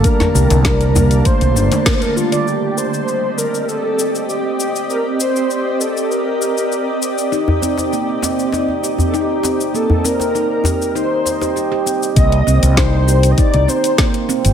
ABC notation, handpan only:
X:1
M:4/4
L:1/16
Q:1/4=99
K:Cdor
V:1 name="Handpan"
D2 G z D2 B,2 A, z D A, B, z A, d | z16 | z16 | E2 C2 B, z C z E2 G z E2 C2 |
B, z C z E2 G z E z e G G G C z | B, z C z E2 G z E2 C2 B, z C z |]